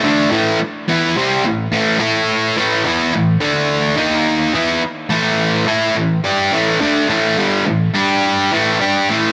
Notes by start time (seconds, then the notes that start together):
0.04 D3 A3 D4
0.31 A2 E3 A3
0.60 muted distorted electric guitar stroke
0.88 E3 B3 E4
1.16 C3 G3 C4
1.44 A2 E3
1.72 A2 E3 A3
2.00 A3 E4 A4
2.57 A2 E3 A3
2.86 E3 B3 E4
3.14 A2 E3
3.40 D3 A3 D4
3.97 D#3 A#3 D#4
4.54 E3 B3 E4
5.09 A2 E3 A3
5.67 A3 E4 A4
5.95 A2 E3
6.24 G3 D4 G4
6.52 A2 E3 A3
6.80 D3 A3 D4
7.09 A2 E3 A3
7.37 G2 D3 G3
7.66 A2 E3
7.95 G3 D4 G4
8.52 A2 E3 A3
8.81 G3 D4 G4
9.10 A2 E3 A3